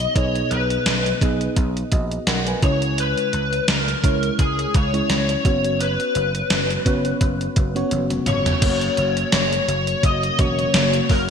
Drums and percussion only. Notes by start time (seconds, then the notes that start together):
0.00 closed hi-hat
0.16 kick, closed hi-hat
0.35 closed hi-hat
0.51 closed hi-hat
0.70 closed hi-hat
0.86 snare, closed hi-hat
1.06 closed hi-hat
1.21 kick, closed hi-hat
1.41 closed hi-hat
1.56 kick, closed hi-hat
1.77 closed hi-hat
1.92 kick, closed hi-hat
2.11 closed hi-hat
2.27 snare, closed hi-hat
2.47 closed hi-hat
2.63 kick, closed hi-hat
2.82 closed hi-hat
2.98 closed hi-hat
3.17 closed hi-hat
3.33 closed hi-hat
3.53 closed hi-hat
3.68 snare, closed hi-hat
3.88 closed hi-hat
4.04 kick, closed hi-hat
4.23 closed hi-hat
4.39 kick, closed hi-hat
4.59 closed hi-hat
4.74 kick, closed hi-hat
4.94 closed hi-hat
5.10 snare, closed hi-hat
5.29 closed hi-hat
5.45 kick, closed hi-hat
5.64 closed hi-hat
5.81 closed hi-hat
6.00 closed hi-hat
6.15 closed hi-hat
6.35 closed hi-hat
6.50 snare, closed hi-hat
6.70 closed hi-hat
6.86 kick, closed hi-hat
7.05 closed hi-hat
7.21 kick, closed hi-hat
7.41 closed hi-hat
7.56 kick, closed hi-hat
7.76 closed hi-hat
7.91 closed hi-hat, high tom
8.10 closed hi-hat, mid tom
8.26 closed hi-hat, mid tom
8.46 closed hi-hat, floor tom
8.62 kick, closed hi-hat, crash
8.81 closed hi-hat
8.97 closed hi-hat
9.17 closed hi-hat
9.32 snare, closed hi-hat
9.53 closed hi-hat
9.68 closed hi-hat
9.87 closed hi-hat
10.03 kick, closed hi-hat
10.23 closed hi-hat
10.39 kick, closed hi-hat
10.59 closed hi-hat
10.74 snare, closed hi-hat
10.93 closed hi-hat
11.09 kick, open hi-hat